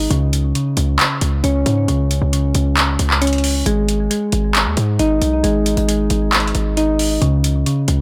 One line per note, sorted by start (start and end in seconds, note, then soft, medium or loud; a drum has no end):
0.00 0.10 G#3 medium
0.00 0.11 D#4 medium
0.10 0.53 C#2 loud
0.10 0.54 C#3 medium
0.10 closed hi-hat medium
0.33 closed hi-hat medium
0.55 1.87 C#3 medium
0.55 closed hi-hat medium
0.77 0.98 C#2 loud
0.77 closed hi-hat medium
0.99 clap loud
0.99 closed hi-hat medium
1.21 1.43 C#2 loud
1.21 closed hi-hat medium
1.44 1.65 C#2 loud
1.44 3.20 C#4 medium
1.44 closed hi-hat medium
1.66 1.87 G#2 loud
1.66 closed hi-hat medium
1.88 2.20 C#2 loud
1.88 2.32 C#3 medium
1.88 closed hi-hat medium
2.11 closed hi-hat medium
2.22 2.54 C#2 loud
2.33 3.66 C#3 medium
2.33 closed hi-hat medium
2.55 2.98 C#2 loud
2.55 closed hi-hat medium
2.77 clap loud
2.77 closed hi-hat medium
2.99 3.63 C#2 loud
2.99 closed hi-hat medium
3.11 clap medium
3.22 3.66 C#4 medium
3.22 closed hi-hat medium
3.27 closed hi-hat medium
3.33 closed hi-hat soft
3.38 closed hi-hat soft
3.44 open hi-hat medium
3.66 4.09 G#1 loud
3.66 4.09 G#3 medium
3.66 closed hi-hat medium
3.89 closed hi-hat medium
4.10 5.42 G#3 medium
4.10 closed hi-hat medium
4.32 4.68 G#1 loud
4.32 closed hi-hat medium
4.55 clap loud
4.55 closed hi-hat medium
4.66 4.77 D#2 loud
4.77 4.99 G#2 loud
4.77 closed hi-hat medium
4.99 5.21 G#1 loud
4.99 6.76 D#4 loud
4.99 closed hi-hat medium
5.22 5.43 B1 loud
5.22 closed hi-hat medium
5.43 5.76 G#1 loud
5.43 5.87 G#3 medium
5.43 closed hi-hat medium
5.66 closed hi-hat medium
5.77 6.09 G#1 loud
5.77 closed hi-hat soft
5.88 7.22 G#3 medium
5.88 closed hi-hat medium
6.10 6.53 G#1 loud
6.10 closed hi-hat medium
6.33 clap loud
6.33 closed hi-hat medium
6.40 closed hi-hat medium
6.48 closed hi-hat medium
6.55 7.19 G#1 loud
6.55 closed hi-hat medium
6.77 7.22 D#4 medium
6.77 closed hi-hat medium
6.99 open hi-hat medium
7.22 7.64 C#2 loud
7.22 7.65 C#3 medium
7.22 closed hi-hat medium
7.44 closed hi-hat medium
7.66 8.01 C#3 medium
7.66 closed hi-hat medium
7.88 8.01 C#2 loud
7.88 closed hi-hat medium